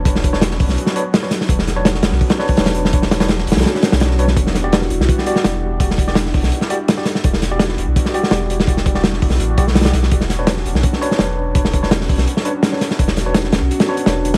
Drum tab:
HH |x---x---x---o---x---x---x---x---|x---x---x---x---o-x---o-x-x-x---|x---x-x-x---xxxxx---x-x-x---x---|x---x---x---x---x---x---x-------|
SD |--o---o-o-o---o---o-----o-o-o-o-|--o-o---o-o-o-o---o-o---o-o---o-|--o-o-o-o-o--oooo-o-o-o-o-o---o-|--o-o---o-o---o---o---o-o-------|
BD |o---o-------o-------------------|o---------------o-----o---------|o-------------------------------|o---------------o---------------|

HH |x---x---x---o---x---x---x---x---|x---x---x---x---x---x---x---x---|x---x---x---o---x---x---xxx-x---|x---x---x---x---x---x---x-------|
SD |--o---o-o-o---o---o-----o-o-o-o-|--o-o---o-o-------o---o-o-----o-|--o---o-o-o---o-------o-ooo-o-o-|--o-o---o-o---o---o---o-o-------|
BD |o---o-------o-------------------|o---------------o---------------|o---o-------o-------o-----------|o---------------o---------------|

HH |x---x---x---o---x---x---x---x---|x---x---x---x---x-x---x-x---x-x-|
SD |--o---o-o-o---o---o-----o-o-o-o-|--o-o---o-o-o-----o-----o-----o-|
BD |o---o-------o-------------------|o-------------------------------|